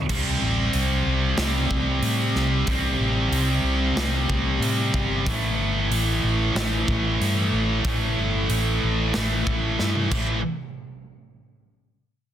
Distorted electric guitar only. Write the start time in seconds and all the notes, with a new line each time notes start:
0.10 C3 G3 C4
1.38 C3 G3 C4
2.69 C3 G3 C4
3.97 C3 G3 C4
5.26 A2 E3 A3
6.56 A2 E3 A3
7.86 A2 E3 A3
9.15 A2 E3 A3
10.12 A2 E3 A3